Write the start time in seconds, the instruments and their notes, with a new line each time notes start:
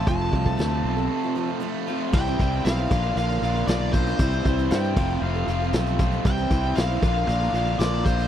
Already playing: overdriven electric guitar F3 A3 F4
0.06 fingered electric bass F1, overdriven electric guitar F2 C3 F3 A3 C4 F4, twelve-string acoustic guitar F3 C4 F4 A4, lead electric guitar A5, kick, closed hi-hat
0.19 twelve-string acoustic guitar C4 F4 A4
0.32 fingered electric bass C2, overdriven electric guitar C3, twelve-string acoustic guitar F3 C4 F4 A4, kick
0.45 twelve-string acoustic guitar C4 F4 A4, kick
0.57 fingered electric bass D2, twelve-string acoustic guitar F3 C4 F4 A4, overdriven electric guitar A3, snare, closed hi-hat
0.83 fingered electric bass B1, overdriven electric guitar C4
0.97 twelve-string acoustic guitar C4 F4 A4
1.09 overdriven electric guitar A3
1.24 twelve-string acoustic guitar C4 F4 A4
1.35 overdriven electric guitar F3, twelve-string acoustic guitar F3 C4 F4 A4
1.47 twelve-string acoustic guitar C4 F4 A4
1.60 twelve-string acoustic guitar F3 C4 F4 A4, overdriven electric guitar A3
1.87 overdriven electric guitar C3 F3 A3 C4 F4, twelve-string acoustic guitar F3 C4 F4 A4
1.91 overdriven electric guitar F2
2.12 fingered electric bass C2, twelve-string acoustic guitar C3 G3 C4 E4 C5, overdriven electric guitar C3 E3 G3 C4 E4, lead electric guitar G5, kick, crash
2.25 twelve-string acoustic guitar C4 E4 C5, closed hi-hat
2.39 fingered electric bass C2, overdriven electric guitar C3 E3 G3 C4 E4, kick, closed hi-hat
2.52 twelve-string acoustic guitar C4 E4 C5
2.65 fingered electric bass B1, twelve-string acoustic guitar C3 G3 C4 E4 C5, overdriven electric guitar C3 E3 G3 C4 E4, lead electric guitar F5, snare, closed hi-hat
2.78 twelve-string acoustic guitar C4 E4 C5
2.90 fingered electric bass A#1, overdriven electric guitar A#2 D3 A#3 D4 F4, twelve-string acoustic guitar F3 A#3, kick, closed hi-hat
3.04 twelve-string acoustic guitar F3 A#3 D4 A#4
3.16 fingered electric bass A#1, overdriven electric guitar A#2 D3 A#3 D4 F4, lead electric guitar F5, closed hi-hat
3.29 twelve-string acoustic guitar F3 A#3 D4 A#4, snare
3.42 fingered electric bass A#1, overdriven electric guitar A#2 D3 A#3 D4 F4, twelve-string acoustic guitar F3 D4 A#4, closed hi-hat
3.55 twelve-string acoustic guitar F3 A#3 D4 A#4
3.67 fingered electric bass B1, overdriven electric guitar A#2 D3 A#3 D4 F4, twelve-string acoustic guitar A#2 D3 F3 A#3 D4 A#4, lead electric guitar D5, snare, closed hi-hat
3.93 overdriven electric guitar A#2 D3 A#3 D4 F4, twelve-string acoustic guitar F3 A#3 D4 A#4, lead electric guitar C5, kick, closed hi-hat
4.07 snare, closed hi-hat
4.18 fingered electric bass C2, overdriven electric guitar C3 E3 G3 C4 E4, twelve-string acoustic guitar C3 G3 C4 E4 C5, kick, closed hi-hat
4.32 twelve-string acoustic guitar C4 C5, closed hi-hat
4.45 fingered electric bass C2, overdriven electric guitar C3 E3 G3 C4 E4, kick, closed hi-hat
4.58 twelve-string acoustic guitar C4 E4 C5, closed hi-hat
4.70 fingered electric bass G2, overdriven electric guitar C3 E3 G3 C4 E4, twelve-string acoustic guitar C3 G3 C4 E4 C5, electric slide guitar G5, snare, closed hi-hat
4.84 twelve-string acoustic guitar C4 E4 C5, closed hi-hat
4.96 fingered electric bass F1, overdriven electric guitar F2 C3 F3 A3 C4 F4, twelve-string acoustic guitar C4 F4 A4, kick, crash
5.11 twelve-string acoustic guitar C4 F4 A4
5.22 fingered electric bass F1, overdriven electric guitar F2 C3 F3 A3 C4 F4, electric slide guitar F5
5.35 twelve-string acoustic guitar C4 F4 A4
5.46 fingered electric bass F1, overdriven electric guitar F2 C3 F3 A3 C4 F4, twelve-string acoustic guitar F3, closed hi-hat
5.50 twelve-string acoustic guitar C4 F4 A4
5.62 twelve-string acoustic guitar C4 F4 A4
5.72 fingered electric bass B1, overdriven electric guitar F2 C3 F3 A3 C4 F4, twelve-string acoustic guitar F3 C4 F4, snare, closed hi-hat
5.77 twelve-string acoustic guitar A4
5.86 closed hi-hat
5.98 overdriven electric guitar F2 C3 F3 A3 C4 F4, twelve-string acoustic guitar F3 C4 F4, kick, closed hi-hat
6.02 twelve-string acoustic guitar A4
6.12 closed hi-hat
6.24 fingered electric bass C2, overdriven electric guitar C3 E3 G3 C4 E4, twelve-string acoustic guitar C3 G3 C4 E4 C5, lead electric guitar G5, kick, closed hi-hat
6.38 twelve-string acoustic guitar C4 E4 C5, closed hi-hat
6.50 fingered electric bass C2, overdriven electric guitar C3 E3 G3 C4 E4, kick, closed hi-hat
6.63 twelve-string acoustic guitar C4 E4 C5
6.76 fingered electric bass B1, twelve-string acoustic guitar C3 G3 C4 E4 C5, overdriven electric guitar C3 E3 G3 C4 E4, lead electric guitar F5, snare, closed hi-hat
6.90 twelve-string acoustic guitar C4 E4 C5
7.02 fingered electric bass A#1, overdriven electric guitar A#2 D3 A#3 D4 F4, twelve-string acoustic guitar F3 A#3 D4, kick, closed hi-hat
7.06 twelve-string acoustic guitar A#4
7.17 twelve-string acoustic guitar F3 A#3 D4 A#4
7.27 fingered electric bass A#1, overdriven electric guitar A#2 D3 A#3 D4 F4, lead electric guitar F5, closed hi-hat
7.42 twelve-string acoustic guitar F3 A#3 D4 A#4, snare
7.53 fingered electric bass A#1, overdriven electric guitar A#2 D3 A#3 D4 F4, twelve-string acoustic guitar F3 A#3 D4, closed hi-hat
7.57 twelve-string acoustic guitar A#4
7.68 twelve-string acoustic guitar F3 A#3 D4 A#4
7.79 fingered electric bass A#1, overdriven electric guitar A#2 D3 A#3 D4 F4, twelve-string acoustic guitar A#2 D3 F3 A#3 D4 A#4, lead electric guitar D5, snare, closed hi-hat
8.05 overdriven electric guitar A#2 D3 A#3 D4 F4, twelve-string acoustic guitar F3 A#3 D4 A#4, lead electric guitar C5, kick, closed hi-hat
8.19 closed hi-hat